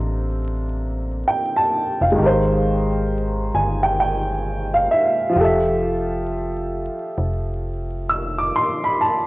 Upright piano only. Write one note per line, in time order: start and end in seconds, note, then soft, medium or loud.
0.00 2.11 C3 medium
0.00 2.13 A#3 medium
0.00 2.15 D4 medium
0.00 2.17 A4 medium
0.00 2.18 C5 medium
0.00 2.20 D#5 medium
1.28 1.55 G5 medium
1.56 1.99 A5 medium
2.02 2.45 F5 medium
2.12 5.31 D#3 medium
2.12 5.29 G#3 medium
2.19 5.33 G4 medium
2.19 5.34 A#4 medium
2.26 5.36 C5 medium
3.55 3.81 G#5 medium
3.83 3.99 G5 medium
4.00 4.70 G5 medium
4.74 4.90 F5 medium
4.91 5.43 E5 medium
5.30 8.47 F3 medium
5.30 8.49 F4 medium
5.37 8.51 G4 medium
5.37 8.53 A4 medium
5.44 8.54 E5 medium
8.09 8.36 E6 medium
8.38 8.54 D6 medium
8.56 8.82 C6 medium
8.84 9.00 B5 medium
9.01 9.27 A5 medium